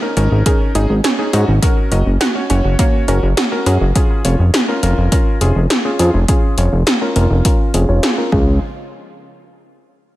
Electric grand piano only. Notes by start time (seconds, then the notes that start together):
0.02 C#4 D#4 A#4
0.17 C#4 D#4 A#4
0.46 C#4 D#4 A#4
0.75 C#4 D#4 G#4
1.19 C#4 D#4 G#4
1.33 C#4 D#4 F#4
1.62 C#4 F#4 A#4
1.92 C#4 F#4 D#5
2.35 C#4 F#4 C#5
2.50 C#4 F#4 C#5
2.79 C#4 F#4 C#5
3.08 C#4 F#4 A#4
3.52 C#4 F#4 A#4
3.66 C#4 F#4 G#4
3.96 C#4 F4 G#4
4.25 C#4 F4 C#5
4.68 C#4 F4 A#4
4.83 C#4 F4 A#4
5.12 C#4 F4 A#4
5.41 C#4 F4 G#4
5.85 C#4 F4 G#4
5.99 C#4 F4 G#4
6.29 C#4 F4 G#4
6.58 C#4 F4 C#5
7.01 C#4 F4 A#4
7.16 C#4 F4 A#4
7.45 C#4 F4 A#4
7.74 C#4 F4 G#4
7.89 C#4 F4 C#5
8.03 C#4 F4 G#4
8.18 C#4 F4 A#4
8.32 C#4 F4 G#4